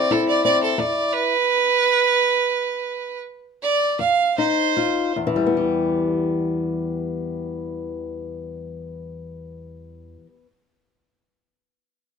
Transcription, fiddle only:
0.00 0.13 D5 medium
0.12 0.27 A4 medium
0.28 0.44 D5 medium
0.45 0.60 D5 loud
0.63 0.80 A4 medium
0.79 1.15 D5 medium
1.13 3.21 B4 loud
3.63 3.98 D5 medium
4.00 4.36 F5 medium
4.38 5.14 C5 loud

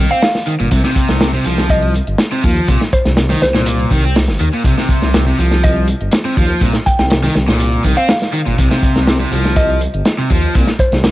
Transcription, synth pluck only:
0.11 0.18 F5 medium
0.22 0.31 F5 medium
1.70 1.83 D#5 medium
2.93 3.06 C5 medium
3.42 3.79 C5 medium
5.64 5.76 D#5 medium
6.86 6.94 G5 medium
6.99 7.07 G5 medium
7.97 8.05 F5 medium
8.09 8.18 F5 medium
9.56 9.69 D#5 medium
10.80 10.92 C5 medium

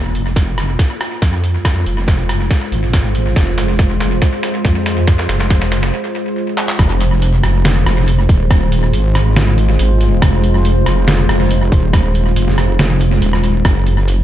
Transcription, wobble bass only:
0.00 0.77 F1 medium
1.22 1.85 F2 medium
1.86 2.49 F1 loud
2.72 3.35 G#1 medium
3.36 4.20 F1 loud
4.65 5.27 F2 loud
5.29 5.92 F1 loud
6.79 7.42 F1 loud
7.43 7.85 F1 medium
7.86 8.28 F1 loud
8.29 8.92 D#1 loud
8.93 9.78 G#1 loud
9.79 10.20 G#1 medium
10.22 10.85 F1 loud
10.86 11.28 F1 medium
11.29 11.70 F1 medium
11.72 12.35 D#1 loud
12.36 13.20 F1 loud
13.22 13.63 D#1 loud
13.65 14.24 F#1 loud

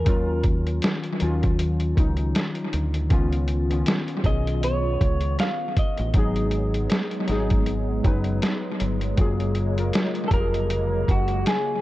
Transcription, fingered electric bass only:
0.07 0.79 D#2 loud
1.22 1.93 D#2 medium
1.98 2.32 C#2 loud
2.74 3.08 D2 medium
3.11 3.83 C#2 loud
4.25 4.96 B1 medium
5.02 5.36 C#2 loud
5.99 6.13 A1 loud
6.15 6.87 G#1 loud
7.29 8.01 G#1 medium
8.05 8.39 F#1 loud
8.81 9.15 G1 medium
9.19 9.90 F#1 loud
10.32 11.04 F1 medium
11.09 11.43 F#1 loud

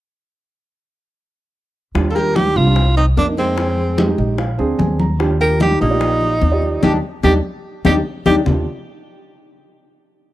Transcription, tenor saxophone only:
2.11 2.16 A4 medium
2.15 2.37 A#4 loud
2.36 2.58 G4 loud
2.56 2.96 F4 medium
2.97 3.06 D#4 medium
3.18 3.27 D4 medium
3.38 4.15 C4 medium
5.41 5.60 A#4 loud
5.62 5.80 G4 loud
5.82 6.79 D#4 medium
6.84 6.93 G4 medium
7.24 7.34 G4 medium
7.86 7.95 G4 medium
8.26 8.36 G4 medium

